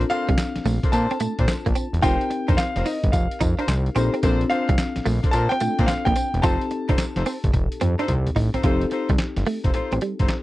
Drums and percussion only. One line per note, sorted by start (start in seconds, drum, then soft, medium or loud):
0.01 closed hi-hat soft
0.10 closed hi-hat medium
0.29 kick loud
0.29 closed hi-hat soft
0.38 snare loud
0.38 clap medium
0.38 closed hi-hat medium
0.38 tambourine medium
0.56 snare medium
0.56 closed hi-hat medium
0.65 open hi-hat medium
0.65 tambourine medium
0.83 kick loud
0.83 closed hi-hat soft
0.93 closed hi-hat medium
0.93 tambourine medium
1.11 closed hi-hat medium
1.20 closed hi-hat medium
1.20 tambourine medium
1.39 kick loud
1.39 closed hi-hat medium
1.48 snare loud
1.48 clap medium
1.48 closed hi-hat medium
1.48 tambourine medium
1.66 kick medium
1.66 closed hi-hat soft
1.75 closed hi-hat medium
1.75 tambourine medium
1.94 closed hi-hat medium
2.03 kick loud
2.03 closed hi-hat medium
2.03 tambourine medium
2.21 closed hi-hat soft
2.31 closed hi-hat medium
2.49 kick loud
2.49 closed hi-hat soft
2.58 snare loud
2.58 clap medium
2.58 closed hi-hat medium
2.58 tambourine loud
2.76 snare medium
2.76 closed hi-hat medium
2.86 open hi-hat medium
2.86 tambourine medium
3.04 kick loud
3.04 closed hi-hat soft
3.13 kick medium
3.13 closed hi-hat medium
3.13 tambourine medium
3.31 closed hi-hat medium
3.41 kick medium
3.41 closed hi-hat medium
3.41 tambourine medium
3.59 closed hi-hat medium
3.68 snare loud
3.68 clap medium
3.68 closed hi-hat medium
3.68 tambourine medium
3.86 closed hi-hat soft
3.96 closed hi-hat medium
3.96 tambourine medium
4.14 closed hi-hat medium
4.23 kick loud
4.23 closed hi-hat medium
4.23 tambourine medium
4.41 closed hi-hat soft
4.50 closed hi-hat medium
4.69 kick loud
4.69 closed hi-hat medium
4.78 snare loud
4.78 clap medium
4.78 closed hi-hat medium
4.78 tambourine medium
4.96 snare medium
4.96 closed hi-hat medium
5.06 open hi-hat medium
5.06 tambourine medium
5.24 kick loud
5.24 closed hi-hat soft
5.33 closed hi-hat medium
5.33 tambourine medium
5.51 closed hi-hat medium
5.60 closed hi-hat medium
5.60 tambourine medium
5.79 kick loud
5.79 closed hi-hat medium
5.88 snare loud
5.88 clap medium
5.88 closed hi-hat medium
5.88 tambourine medium
6.06 kick medium
6.06 closed hi-hat soft
6.16 closed hi-hat medium
6.16 tambourine medium
6.34 closed hi-hat medium
6.43 kick loud
6.43 closed hi-hat medium
6.43 tambourine medium
6.61 closed hi-hat soft
6.71 closed hi-hat medium
6.89 kick loud
6.89 closed hi-hat medium
6.98 snare loud
6.98 clap medium
6.98 closed hi-hat medium
6.98 tambourine loud
7.16 snare medium
7.16 closed hi-hat medium
7.26 open hi-hat medium
7.26 tambourine medium
7.44 kick loud
7.44 closed hi-hat soft
7.54 kick medium
7.54 closed hi-hat medium
7.54 high tom medium
7.72 closed hi-hat medium
7.81 closed hi-hat medium
7.81 mid tom medium
7.99 closed hi-hat medium
8.08 closed hi-hat medium
8.08 mid tom medium
8.27 closed hi-hat soft
8.27 mid tom medium
8.36 floor tom loud
8.36 open hi-hat medium
8.54 closed hi-hat medium
8.54 floor tom medium
8.63 kick loud
8.63 closed hi-hat medium
8.81 closed hi-hat soft
8.91 closed hi-hat medium
9.09 kick medium
9.09 closed hi-hat soft
9.18 snare loud
9.18 clap medium
9.18 closed hi-hat medium
9.36 snare medium
9.36 closed hi-hat medium
9.46 open hi-hat medium
9.64 kick medium
9.64 closed hi-hat soft
9.74 closed hi-hat medium
9.92 closed hi-hat medium
10.01 closed hi-hat medium
10.19 kick medium
10.19 closed hi-hat soft
10.28 snare loud
10.28 clap medium
10.28 closed hi-hat medium